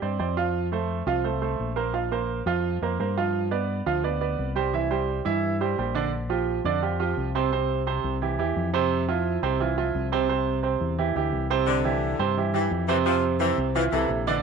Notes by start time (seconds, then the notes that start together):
0.02 G2 C4 C5 D5
0.19 F2 C4 C5 D5
0.37 F3 F4 F5
0.72 A3 A4 C5
1.06 C2 F3 F4 F5
1.24 A3 A4 C5
1.42 A3 A4 C5
1.59 A#1
1.76 A#3 A#4 C5
1.93 F3 F4 F5
2.11 A#3 A#4 C5
2.46 F2 F3 F4 F5
2.82 F2 A#3 A#4 C5
2.99 G2 A#3 A#4 C5
3.17 F3 F4 F5
3.51 B3 B4 D5
3.86 D2 F3 F4 F5
4.04 B3 B4 D5
4.21 B3 B4 D5
4.39 C2
4.56 G3 G4 C5
4.73 E3 E4 E5
4.91 G3 G4 C5
5.25 G2 E3 E4 E5
5.61 G3 G4 C5
5.78 A#1 G3 G4 C5
5.95 D3 D4 D5
6.29 F3 F4 G4
6.64 F2 D3 D4 D5
6.82 F3 F4 G4
6.99 F3 F4 G4
7.17 C2
7.35 C3 C4 C5
7.52 C3 C4 C5
7.87 C3 C4 C5
8.04 C2
8.22 E3 E4 G4
8.39 E2 E3 E4 G4
8.56 F2
8.74 C3 C4 C5
9.08 F3 E4 F4
9.42 C2 C3 C4 C5
9.60 E3 E4 F4
9.77 F3 E4 F4
9.94 C2
10.12 C3 C4 C5
10.29 C3 C4 C5
10.63 C3 C4 C5
10.81 E2
10.98 E3 E4 G4
11.15 D2 E3 E4 G4
11.32 C2
11.50 C3 C4 C5
11.67 D3
11.84 E3 E4 G4
12.19 G2 C3 C4 C5
12.37 E3 E4 G4
12.54 E3 E4 G4
12.71 F2
12.88 C3 E3 C4 C5
13.05 C3 F3 C4 C5
13.40 C3 E3 C4 C5
13.58 C2
13.75 E3 E4 F4
13.92 C2 C3 E3 E4 A4
14.09 A#1
14.26 D3 E3 D4 D5